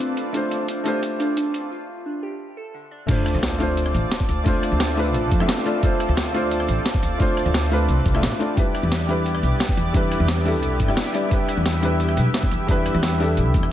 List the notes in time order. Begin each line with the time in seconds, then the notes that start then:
Already playing: A3 C4 D4 F4 A4 B4 C5 D5
0.00 C4
0.17 closed hi-hat
0.32 A3 D4 F4 C5, kick, closed hi-hat
0.51 closed hi-hat
0.68 D4, kick, closed hi-hat
0.84 A3 D4 F4 G4, closed hi-hat
0.88 C5
1.03 kick, closed hi-hat
1.20 D4, closed hi-hat
1.37 D4, kick, closed hi-hat
1.54 closed hi-hat
1.71 F4
2.06 D4
2.23 G4
2.57 A4
2.74 D3
2.91 D4
3.07 A3 C4 D4 F4 A4 C5 D5, kick, closed hi-hat, crash, sub drop
3.26 cross-stick, closed hi-hat
3.34 D2
3.43 snare, closed hi-hat
3.58 A3 D4 F4 C5, closed hi-hat
3.77 closed hi-hat
3.86 cross-stick
3.94 A1, closed hi-hat
4.12 snare, closed hi-hat
4.20 kick
4.29 D2, closed hi-hat
4.44 A3 D4 F4 C5, kick, closed hi-hat
4.63 cross-stick, closed hi-hat
4.72 D2
4.80 snare, closed hi-hat
4.95 A3 D4 F4 B4, open hi-hat
5.14 A1, closed hi-hat
5.32 F2, kick, closed hi-hat
5.39 A3 D4 F4 E5, cross-stick
5.49 snare, closed hi-hat
5.57 snare
5.65 A3 D4 F4 D5, closed hi-hat
5.81 A3 D4 F4 C5 D5, kick, closed hi-hat
6.00 cross-stick, closed hi-hat
6.09 D2
6.17 snare, closed hi-hat
6.32 A3 D4 F4 C5, closed hi-hat
6.51 closed hi-hat
6.60 cross-stick
6.68 A1, closed hi-hat
6.86 snare, closed hi-hat
6.94 kick
7.03 D2, closed hi-hat
7.18 A3 D4 F4 C5, kick, closed hi-hat
7.37 cross-stick, closed hi-hat
7.46 D2
7.54 snare, closed hi-hat
7.69 A3 D4 F4 B4, open hi-hat
7.89 C2, closed hi-hat
8.06 C2, kick, closed hi-hat
8.13 A3 D4 F4 E5, cross-stick
8.23 A1, snare, closed hi-hat
8.32 snare
8.39 A3 D4 F4 D5, closed hi-hat
8.55 G3 B3 D4 E4 G4 B4 D5, kick, closed hi-hat
8.75 cross-stick, closed hi-hat
8.83 E2
8.92 snare, closed hi-hat
9.07 G3 D4 E4 B4, closed hi-hat
9.26 closed hi-hat
9.35 cross-stick
9.43 B1, closed hi-hat
9.60 snare, closed hi-hat
9.69 kick
9.77 E2, closed hi-hat
9.92 G3 D4 E4 B4, kick, closed hi-hat
10.12 cross-stick, closed hi-hat
10.20 E2
10.28 snare, closed hi-hat
10.44 G3 D4 E4 A4, open hi-hat
10.63 B1, closed hi-hat
10.80 G2, kick, closed hi-hat
10.87 G3 D4 E4 E5, cross-stick
10.97 snare, closed hi-hat
11.06 snare
11.13 G3 D4 E4 D5, closed hi-hat
11.29 G3 D4 E4 B4 E5, kick, closed hi-hat
11.49 cross-stick, closed hi-hat
11.57 E2
11.66 snare, closed hi-hat
11.81 G3 D4 E4, closed hi-hat
11.85 B4
12.00 closed hi-hat
12.09 cross-stick
12.17 B1, closed hi-hat
12.34 snare, closed hi-hat
12.43 kick
12.51 E2, closed hi-hat
12.67 G3 D4 E4 B4, kick, closed hi-hat
12.86 cross-stick, closed hi-hat
12.94 E2
13.03 snare, closed hi-hat
13.18 G3 D4 E4 A4, open hi-hat
13.37 B1, closed hi-hat
13.54 E2, kick, closed hi-hat
13.63 cross-stick